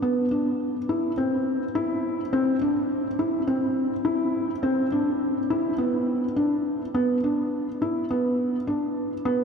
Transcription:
0.02 0.25 B3 medium
0.31 0.76 D4 medium
0.89 1.11 E4 medium
1.18 1.62 C4 medium
1.75 2.20 E4 medium
2.33 2.55 C4 medium
2.61 3.06 D4 medium
3.19 3.42 E4 medium
3.47 3.93 C4 medium
4.05 4.50 E4 medium
4.63 4.86 C4 medium
4.92 5.37 D4 medium
5.50 5.73 E4 medium
5.78 6.23 B3 medium
6.36 6.81 D4 medium
6.94 7.17 B3 medium
7.24 7.68 D4 medium
7.82 8.04 E4 medium
8.10 8.55 B3 medium
8.67 9.12 D4 medium
9.25 9.44 B3 loud

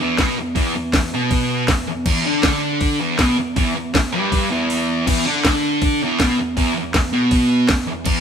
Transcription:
0.00 0.18 E2 medium
0.00 0.18 E3 loud
0.18 0.36 B2 loud
0.18 0.37 B3 loud
0.18 kick loud
0.18 snare loud
0.18 open hi-hat medium
0.38 0.52 E2 medium
0.55 0.74 E2 loud
0.55 0.74 E3 loud
0.55 kick loud
0.55 open hi-hat medium
0.76 0.90 E2 medium
0.93 1.09 E2 medium
0.93 kick loud
0.93 snare loud
0.93 open hi-hat medium
1.14 1.69 B2 medium
1.14 1.69 B3 medium
1.31 kick loud
1.31 open hi-hat medium
1.68 1.84 E2 medium
1.68 kick loud
1.68 snare loud
1.68 open hi-hat medium
1.87 2.02 E2 medium
2.06 2.24 E2 loud
2.06 2.25 E3 loud
2.06 kick loud
2.06 crash loud
2.25 2.41 D3 medium
2.25 2.42 D4 medium
2.42 2.99 D3 loud
2.42 2.99 D4 loud
2.42 kick loud
2.42 snare loud
2.42 open hi-hat medium
2.81 kick loud
2.81 open hi-hat medium
3.00 3.18 E2 loud
3.00 3.19 E3 loud
3.18 3.37 B2 medium
3.18 3.37 B3 loud
3.18 kick loud
3.18 snare loud
3.18 open hi-hat medium
3.38 3.53 E2 medium
3.56 3.74 E2 loud
3.56 3.75 E3 loud
3.56 kick loud
3.56 open hi-hat medium
3.75 3.90 E2 medium
3.94 4.12 E2 medium
3.94 kick loud
3.94 snare loud
3.94 open hi-hat medium
4.12 4.49 G2 medium
4.12 4.50 G3 loud
4.32 kick loud
4.32 open hi-hat medium
4.50 5.06 E2 medium
4.50 5.07 E3 loud
4.70 open hi-hat medium
5.07 5.25 E2 loud
5.07 5.26 E3 loud
5.07 kick loud
5.07 open hi-hat medium
5.07 crash loud
5.26 5.44 D3 medium
5.26 5.45 D4 medium
5.44 6.01 D3 medium
5.44 6.01 D4 loud
5.44 kick loud
5.44 snare loud
5.44 open hi-hat medium
5.82 kick loud
5.82 open hi-hat medium
6.02 6.20 E2 medium
6.02 6.20 E3 loud
6.20 6.38 B2 medium
6.20 6.38 B3 loud
6.20 kick loud
6.20 snare loud
6.20 open hi-hat medium
6.38 6.53 E2 medium
6.57 6.73 E2 loud
6.57 6.75 E3 loud
6.57 kick loud
6.57 open hi-hat medium
6.75 6.90 E2 medium
6.94 7.09 E2 medium
6.94 kick loud
6.94 snare loud
6.94 open hi-hat medium
7.13 7.68 B2 medium
7.13 7.69 B3 loud
7.31 kick loud
7.31 open hi-hat medium
7.68 7.84 E2 medium
7.68 kick loud
7.68 snare loud
7.68 open hi-hat medium
7.87 8.03 E2 medium
8.05 8.20 E2 loud
8.05 8.20 E3 loud
8.05 kick loud
8.05 crash loud

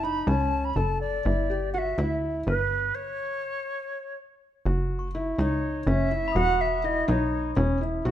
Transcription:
0.00 0.23 F#1 medium
0.00 0.24 D#4 medium
0.00 0.29 B5 medium
0.27 0.73 C#2 medium
0.27 0.69 C#4 medium
0.27 0.66 A5 medium
0.65 0.77 B5 medium
0.76 1.22 F#1 medium
0.76 1.18 A4 medium
0.76 1.00 A5 medium
1.01 1.70 D5 medium
1.25 1.94 G1 loud
1.25 1.46 E4 medium
1.50 1.70 G4 medium
1.73 1.95 F#4 medium
1.73 1.79 F#5 medium
1.78 2.16 E5 medium
1.98 2.44 D2 medium
1.98 2.40 E4 medium
2.47 2.93 G1 loud
2.47 2.96 B4 medium
2.47 2.88 B4 medium
2.95 4.17 C#5 medium
4.66 5.34 F#1 medium
4.66 5.07 F#4 medium
4.99 5.90 C#6 medium
5.15 5.35 E4 medium
5.38 5.84 C#2 medium
5.38 5.80 D#4 medium
5.38 5.89 C#5 medium
5.87 6.32 F#1 medium
5.87 6.08 C#4 medium
5.87 6.38 E5 medium
6.11 6.32 E4 medium
6.28 6.58 B5 medium
6.32 7.04 E1 medium
6.32 6.77 F#4 medium
6.32 6.62 F#5 loud
6.32 6.60 D#6 soft
6.61 6.86 E5 medium
6.84 7.05 E4 medium
6.84 7.08 D#5 medium
7.08 7.54 B1 medium
7.08 7.49 D#4 medium
7.08 7.54 C#5 medium
7.56 8.03 E1 loud
7.56 7.77 C#4 medium
7.81 8.02 E4 medium
8.05 8.11 B1 medium
8.05 8.11 F#4 medium

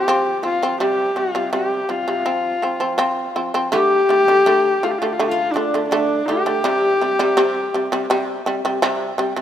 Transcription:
0.00 0.44 G4 medium
0.08 0.37 F3 medium
0.08 0.37 C4 medium
0.43 0.58 F3 medium
0.43 0.59 C4 medium
0.43 0.79 F4 medium
0.63 0.77 F3 medium
0.63 0.78 C4 medium
0.80 1.10 C3 medium
0.80 1.10 G3 medium
0.80 1.20 G4 medium
1.16 1.32 C3 medium
1.16 1.32 G3 medium
1.16 1.52 F4 medium
1.35 1.50 C3 medium
1.35 1.50 G3 medium
1.52 1.83 C3 medium
1.52 1.83 G3 medium
1.52 1.92 G4 medium
1.89 2.04 C3 medium
1.89 2.05 G3 medium
1.89 3.37 F4 medium
2.08 2.23 C3 medium
2.08 2.23 G3 medium
2.26 2.56 F3 medium
2.26 2.56 C4 medium
2.62 2.78 F3 medium
2.62 2.78 C4 medium
2.80 2.96 F3 medium
2.80 2.96 C4 medium
2.98 3.28 F3 medium
2.98 3.29 C4 loud
3.36 3.51 F3 medium
3.36 3.51 C4 medium
3.54 3.69 F3 medium
3.54 3.69 C4 medium
3.72 4.02 D3 medium
3.72 4.02 A3 medium
3.72 6.08 G4 medium
3.72 4.85 G4 loud
4.09 4.24 D3 medium
4.09 4.25 A3 medium
4.28 4.43 D3 medium
4.28 4.43 A3 medium
4.46 4.75 D3 medium
4.46 4.76 A3 medium
4.83 4.97 D3 medium
4.83 4.98 A3 medium
4.83 4.92 F4 medium
4.91 5.00 G4 medium
4.98 5.16 D3 medium
4.98 5.07 F4 medium
5.02 5.16 A3 medium
5.02 5.14 G4 medium
5.12 5.22 F4 medium
5.19 5.48 D3 medium
5.19 5.49 A3 loud
5.19 5.29 G4 medium
5.28 5.53 F4 medium
5.28 7.84 F4 medium
5.52 5.70 D3 medium
5.52 5.87 D4 medium
5.52 5.91 D4 medium
5.57 5.70 A3 medium
5.74 5.88 D3 medium
5.74 5.89 A3 medium
5.88 6.26 D4 medium
5.88 8.70 D4 medium
5.92 6.21 D3 medium
5.92 6.21 A3 loud
6.25 6.42 D3 medium
6.25 6.43 A3 medium
6.25 8.44 G4 loud
6.25 8.64 G4 medium
6.46 6.61 D3 medium
6.46 6.61 A3 medium
6.64 6.93 C3 medium
6.64 6.94 G3 loud
7.01 7.16 C3 medium
7.01 7.16 G3 medium
7.19 7.33 C3 medium
7.19 7.34 G3 loud
7.37 7.66 C3 loud
7.37 7.66 G3 loud
7.74 7.88 C3 medium
7.74 7.88 G3 medium
7.92 8.06 C3 medium
7.92 8.06 G3 loud
8.10 8.38 C3 loud
8.10 8.39 G3 loud
8.46 8.60 C3 medium
8.46 8.61 G3 medium
8.65 8.79 C3 medium
8.65 8.79 G3 medium
8.82 9.11 C3 loud
8.82 9.11 G3 loud
9.18 9.32 C3 medium
9.18 9.33 G3 medium
9.36 9.42 C3 medium
9.36 9.42 G3 medium

